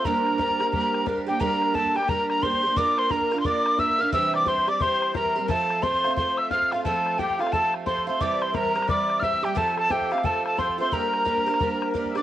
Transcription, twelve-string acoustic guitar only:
X:1
M:4/4
L:1/8
Q:"Swing" 1/4=177
K:Gdor
V:1 name="Twelve-string acoustic guitar"
[G,B,DG]2 [G,B,DG] [B,DG] [G,B,DG]2 [G,B,DG] [B,DG] | [G,B,DG]2 [G,B,DG] [B,DG] [G,B,DG]2 [G,B,DG] [B,DG] | [B,DFB]2 [B,DFB] [DFB] [B,DFB]2 [B,DFB] [DFB] | [C,E,G,CG]2 [E,G,CG] [G,CG] [E,G,CG]2 [E,G,CG] [G,CG] |
[F,A,CF]2 [F,A,CF] [A,CF] [F,A,CF]2 [F,A,CF] [A,CF] | [F,A,CF]2 [F,A,CF] [A,CF] [F,A,CF]2 [F,A,CF] [A,CF] | [C,E,G,CG]2 [E,G,CG] [G,CG] [E,G,CG]2 [E,G,CG] [G,CG] | [F,A,CF]2 [F,A,CF] [A,CF] [F,A,CF]2 [F,A,CF] [A,CF] |
[G,B,DG]2 [G,B,DG] [B,DG] [G,B,DG]2 [G,B,DG] [B,DG] |]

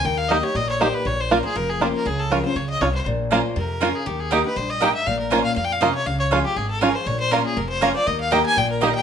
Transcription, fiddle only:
X:1
M:4/4
L:1/8
Q:"Swing" 1/4=240
K:Bbdor
V:1 name="Fiddle"
g f e d e d c _c | d c B A B A G B | A =A B c d e d c | z4 B3 A |
G A B _c =c e g =e | f B d f (3f g f e d | f d z G A =A B c | d c B A B c d =d |
e f g a g B e g |]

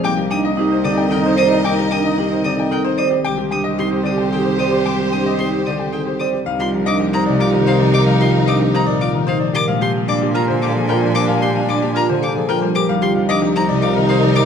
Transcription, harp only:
X:1
M:3/4
L:1/8
Q:1/4=112
K:Ablyd
V:1 name="Harp" clef=bass
[B,C]2 C D, E, G, | B,2 C D, E, G, | A,2 C D, E, G, | A,2 C D, E, G, |
[K:Cm] G, F, B, C, E, F, | G, F, B, B,, E, F, | A, G, B, D, F, G, | A, G, B, D, F, G, |
G, F, B, C, E, F, |]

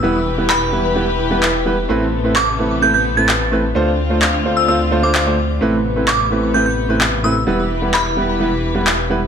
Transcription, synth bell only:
X:1
M:4/4
L:1/16
Q:1/4=129
K:Am
V:1 name="Synth bell"
z4 b3 z8 z | z4 d' z3 g' g' z a' z4 | z6 z e' e' z2 d' d' z3 | z4 d' z3 g' g' z4 e' z |
z4 b3 z8 z |]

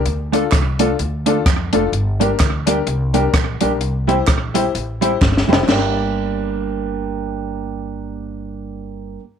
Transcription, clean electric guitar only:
X:1
M:4/4
L:1/16
Q:"Swing" 1/4=128
K:Gdor
V:1 name="Clean electric guitar"
z2 [A,DFA] z3 [A,DFA] z3 [A,DFA] z3 [A,DFA] z | z2 [G,B,DG] z3 [G,B,DG] z3 [G,B,DG] z3 [G,B,DG] z | z2 [G,CEG] z3 [G,CEG] z3 [G,CEG] z3 [G,CEG] z | [G,B,DG]16- |
[G,B,DG]16 |]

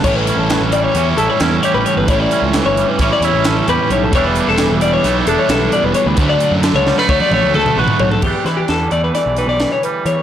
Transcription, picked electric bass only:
X:1
M:9/8
L:1/16
Q:3/8=88
K:Edor
V:1 name="Picked electric bass" clef=bass
A,,,3 A,,,2 A,,,3 E,,2 A,,, z E,,2 z A,,, z G,,, | A,,,2 z C,,2 G,,,2 z A,,, z E,, A,,,3 E,, z B,,,2 | E,,,3 E,,,2 E,,,3 B,,,2 E,,, z B,,,2 z E,,, z D,, | D,,2 z F,,2 C,,2 z D,, z A,,, D,,3 A,,, z B,,,2 |
E,, z E,2 E,,2 E,,2 z B,,,2 B,,,2 z3 E, z |]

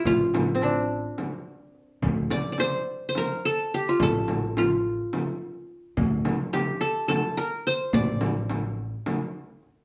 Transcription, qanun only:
X:1
M:7/8
L:1/16
Q:1/4=106
K:none
V:1 name="Qanun"
F3- F/2 C/2 D8 z2 | z2 d3/2 d/2 c3- c/2 c/2 _B2 A2 G F | A4 F8 z2 | z4 G2 A2 A2 _B2 c2 |
d4- d/2 z8 z3/2 |]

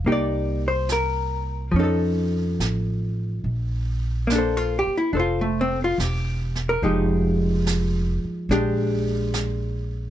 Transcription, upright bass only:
X:1
M:4/4
L:1/8
Q:"Swing" 1/4=71
K:Bb
V:1 name="Upright bass" clef=bass
C,,4 F,,2 A,,,2 | B,,,3 z F,,,2 =E,,,2 | F,,,3 z B,,,4 |]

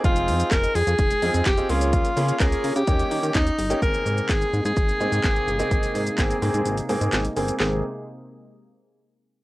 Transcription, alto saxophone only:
X:1
M:4/4
L:1/16
Q:1/4=127
K:Ab
V:1 name="Alto saxophone"
F4 B2 A6 G2 F2- | F4 A3 G4- G E4 | B4 A3 A8- A- | A12 z4 |
A2 z12 z2 |]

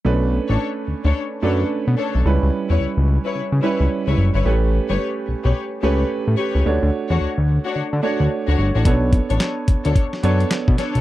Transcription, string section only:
X:1
M:4/4
L:1/16
Q:"Swing 16ths" 1/4=109
K:Bm
V:1 name="String section"
z3 [DAc] z3 [DAc] z2 [DAc] z3 [DAc] z | z3 [EBc] z3 [EBc] z2 [EBc] z2 [EBc] z [EBc] | z3 [GBc] z3 [GBc] z2 [GBc] z3 [GBc] z | z3 [DFc] z3 [DFc] z2 [DFc] z2 [DFc] z [DFc] |
z3 [DAc] z3 [DAc] z2 [DAc] z3 [DAc] z |]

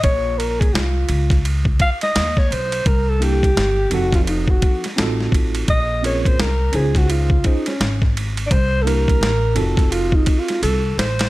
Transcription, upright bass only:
X:1
M:4/4
L:1/8
Q:"Swing 16ths" 1/4=85
K:Bbm
V:1 name="Upright bass" clef=bass
B,,,2 C,, D,,2 z E,, _C,, | C,,2 =G,,, F,,,2 z =A,,, A,,, | B,,,2 C,, D,,2 z A,,,2 | C,,2 =A,,, F,,,2 z C,, A,,, |]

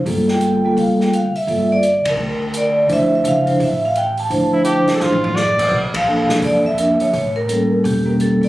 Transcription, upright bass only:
X:1
M:4/4
L:1/8
Q:"Swing" 1/4=170
K:Dm
V:1 name="Upright bass" clef=bass
G,,,4 D,,3 z | G,,,3 ^F,,, D,,4 | D,,2 ^C,,2 A,,,4 | D,,3 z A,,,4 |
B,,,3 z F,,3 z | A,,,4 E,,,3 _E,, |]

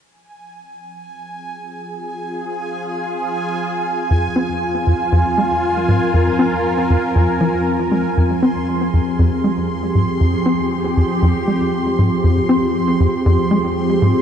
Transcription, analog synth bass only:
X:1
M:4/4
L:1/16
Q:1/4=118
K:Fm
V:1 name="Analog synth bass" clef=bass
z16 | z16 | F,,2 C2 z2 F,,2 F,, z A,2 z2 A,, z | F,,2 C2 z2 F,,2 F,, z F,2 z2 A, z |
F,,2 C2 z2 F,,2 F,, z A,2 z2 A,, z | F,,2 C2 z2 F,,2 F,, z A,2 z2 A,, z | F,,2 C2 z2 F,,2 F,, z A,2 z2 A,, z |]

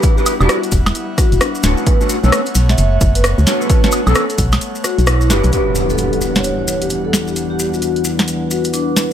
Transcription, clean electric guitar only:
X:1
M:4/4
L:1/16
Q:"Swing 16ths" 1/4=131
K:Edor
V:1 name="Clean electric guitar"
[DEFGB] [DEFGB] z [DEFGd] z8 z2 [A,B,CDF]2- | [A,B,CDF] [A,B,CDF] z [A,B,CDA] z8 z2 [A,B,CDF]2- | [A,B,CDF] [A,B,CDF] z [A,B,CDA] z8 z2 [DEFGB]2 | [DEFGB]16- |
[DEFGB]16 |]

